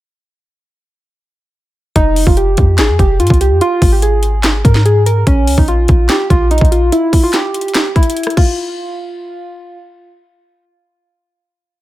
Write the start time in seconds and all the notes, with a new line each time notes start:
1.96 F1 D#4, kick, closed hi-hat
2.16 open hi-hat
2.27 F1 F4, kick
2.37 G4, closed hi-hat
2.57 F2, kick, closed hi-hat
2.78 G#1 G#4, snare, clap, closed hi-hat
2.89 F2
2.99 F1 G4, kick, closed hi-hat
3.20 G#2 F4, closed hi-hat
3.27 C2, kick, closed hi-hat
3.34 closed hi-hat
3.41 G4, closed hi-hat
3.51 F2
3.61 F4, closed hi-hat
3.82 G#1, kick, open hi-hat
3.92 G4
4.02 G#4, closed hi-hat
4.23 closed hi-hat
4.44 G1, snare, clap, closed hi-hat
4.54 G#1
4.65 G#2 A#4, kick, closed hi-hat
4.75 snare
4.85 G#4, closed hi-hat
5.06 A#4, closed hi-hat
5.27 A#1 C#4, kick, closed hi-hat
5.47 C#2, open hi-hat
5.58 A#1 D#4, kick
5.68 F4, closed hi-hat
5.88 A#1, kick, closed hi-hat
6.09 G4, snare, clap, closed hi-hat
6.30 A#1 F4, kick, closed hi-hat
6.51 D#4, closed hi-hat
6.58 A#1, kick, closed hi-hat
6.65 closed hi-hat
6.72 F4, closed hi-hat
6.92 E4, closed hi-hat
7.13 kick, open hi-hat
7.23 F4
7.33 G4, snare, clap, closed hi-hat
7.54 closed hi-hat
7.61 closed hi-hat
7.68 closed hi-hat
7.75 snare, clap, closed hi-hat
7.96 E4, kick, closed hi-hat
8.03 closed hi-hat
8.10 closed hi-hat
8.17 closed hi-hat
8.23 cross-stick, closed hi-hat
8.30 closed hi-hat
8.37 F4, kick, crash